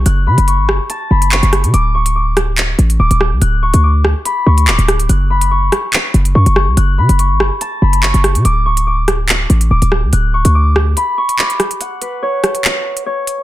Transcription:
<<
  \new Staff \with { instrumentName = "Harp" } { \time 4/4 \key d \lydian \tempo 4 = 143 fis'''8 b''8 cis'''4 a''8 b''8 cis'''4 | d'''8 cis'''8 d'''2 d'''4 | fis'''8 cis'''8 d'''4 b''8 cis'''8 d'''4 | fis'''8 b''8 cis'''2 cis'''4 |
fis'''8 b''8 cis'''4 a''8 b''8 cis'''4 | d'''8 cis'''8 d'''2 d'''4 | fis'''8 cis'''8 d'''4 b''8 cis'''8 d'''4 | fis''8 b'8 cis''2 cis''4 | }
  \new Staff \with { instrumentName = "808-style bass" } { \clef bass \time 4/4 \key d \lydian fis,,8 cis16 fis,,8 gis,,16 fis,,16 r8. fis,,8. fis,,8 cis16 | d,,2~ d,,8 a,,8 d,,16 d,,8 d,16 | d,,8. d,4 r8. d,8 cis,,16 d,,8. | fis,,4. r4 fis,,8 fis,16 fis,,8 cis,16 |
fis,,8 cis16 fis,,8 gis,,16 fis,,16 r8. fis,,8. fis,,8 cis16 | d,,2~ d,,8 a,,8 d,,16 d,,8 d,16 | d,,8. d,4~ d,16 r2 | r1 | }
  \new DrumStaff \with { instrumentName = "Drums" } \drummode { \time 4/4 hh8. hh16 hh8 ss8 hh8. hh16 hc16 hh16 <hh ss>16 hh16 | hh8. hh16 r8 <hh ss>8 <hc hh>8 hh16 hh16 r16 hh16 ss8 | hh8. hh16 r8 ss8 hh8. hh16 hc16 hh16 <hh ss>16 hh16 | hh8. hh16 r8 <hh ss>8 <hc hh>8 hh16 hh16 r16 hh16 ss8 |
hh8. hh16 hh8 ss8 hh8. hh16 hc16 hh16 <hh ss>16 hh16 | hh8. hh16 r8 <hh ss>8 <hc hh>8 hh16 hh16 r16 hh16 ss8 | hh8. hh16 r8 ss8 hh8. hh16 hc16 hh16 <hh ss>16 hh16 | hh8 hh8 r8 <hh ss>16 hh16 hc8. hh16 r8 hh8 | }
>>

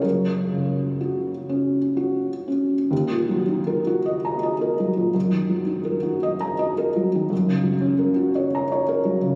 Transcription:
\new Staff \with { instrumentName = "Felt piano" } { \time 6/8 \key fis \major \tempo 4. = 54 << { ais'2~ ais'8 r8 | \key ees \minor r2. | r2. | r2. | } \\ { fis,8 cis8 fis'8 cis'8 fis'8 cis'8 | ees,16 bes,16 ges16 ees'16 bes'16 ges'16 ees''16 bes''16 ees''16 bes'16 ges16 bes,16 | ges,16 ees16 ges16 ees'16 bes'16 ges'16 ees''16 bes''16 ees''16 bes'16 ges16 ees16 | ges,16 des16 ges16 des'16 bes'16 ges'16 des''16 bes''16 des''16 bes'16 ges16 des16 | } >> }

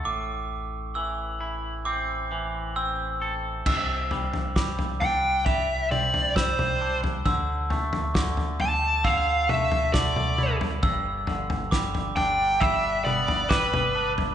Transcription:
<<
  \new Staff \with { instrumentName = "Glockenspiel" } { \time 4/4 \key c \major \tempo 4 = 67 d'''4 e'''4 d'''4 e'''4 | e'''4 d'''4 f''''4 e'''4 | e'''4 d'''4 e'''4 d'''4 | e'''4 d'''4 e'''4 d'''4 | }
  \new Staff \with { instrumentName = "Lead electric guitar" } { \time 4/4 \key c \major r1 | r4. g''8 e''8 d''8 c''8. r16 | r4. a''8 f''8 e''8 d''8. r16 | r4. g''8 e''8 d''8 b'8. r16 | }
  \new Staff \with { instrumentName = "Clean electric guitar" } { \clef bass \time 4/4 \key c \major a,4 e8 e'8 c'8 e8 c'8 a'8 | c8 g8 g8 d'8 g8 c'8 g8 d'8 | d8 a8 d4 d8 a8 d8 e'8 | g,8 d8 g8 d'8 g8 b8 g8 d'8 | }
  \new Staff \with { instrumentName = "Sub bass" } { \clef bass \time 4/4 \key c \major a,,1 | c,1 | d,1 | g,,1 | }
  \new DrumStaff \with { instrumentName = "Drums" } \drummode { \time 4/4 r4 r4 r4 r4 | <cymc bd tomfh>8 tomfh16 tomfh16 <bd sn>16 tomfh16 tomfh8 <bd tomfh>8 toml16 tomfh16 <bd sn>16 <tomfh toml>8 tomfh16 | <bd tomfh>8 tomfh16 tomfh16 <bd sn>16 tomfh16 tomfh8 <bd tomfh>8 <tomfh toml>16 tomfh16 <bd sn toml>16 <tomfh toml>16 toml16 tomfh16 | <bd tomfh>8 tomfh16 tomfh16 <bd sn>16 tomfh16 tomfh8 <bd tomfh>8 toml16 tomfh16 <bd sn>16 <tomfh toml>8 tomfh16 | }
>>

